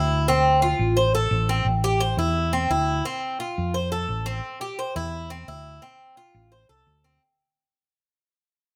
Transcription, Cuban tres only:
Already playing: E4
0.28 C4
0.62 F4
0.97 C5
1.15 A4
1.49 C4
1.84 G4
2.00 C5
2.19 E4
2.53 C4
2.71 E4
3.05 C4
3.40 F4
3.74 C5
3.92 A4
4.26 C4
4.61 G4
4.79 C5
4.96 E4
5.30 C4
5.48 E4
5.82 C4
6.17 F4
6.52 C5
6.69 A4
7.04 C4

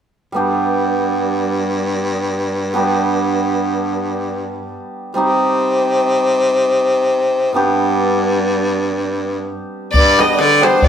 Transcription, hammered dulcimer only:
0.32 G3 B3 D4
0.36 G4
2.73 G3 B3 D4 G4
5.14 G3 C4 D#4 G4
7.53 G3 B3 D4 G4
10.17 G3 B3 D4 G4
10.61 G3 B3 D4 G4

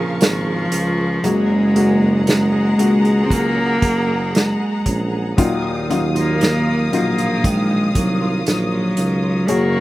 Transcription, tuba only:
Already playing: A#1
0.21 G#1
0.72 C#2
1.23 F#1
2.78 C#2
3.82 F#1
4.86 A#1
5.38 D#2
6.93 A#1
7.95 C2
8.47 A#1
8.98 C#2
9.48 F#1

